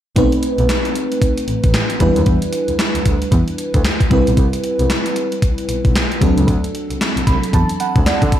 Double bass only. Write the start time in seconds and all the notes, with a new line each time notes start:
0.17 B1
0.59 B1
1.48 A1
1.64 A1
2.00 E2
2.16 D#2
2.27 E2
2.69 D2
2.95 D2
3.06 D2
3.32 E2
3.74 D2
4.11 C2
4.27 B1
4.37 C2
4.80 C2
5.69 B1
5.85 B1
6.22 D2
6.37 C#2
6.48 D2
6.90 C2
7.17 C2
7.27 C2
7.53 E2
7.96 D2
8.22 D3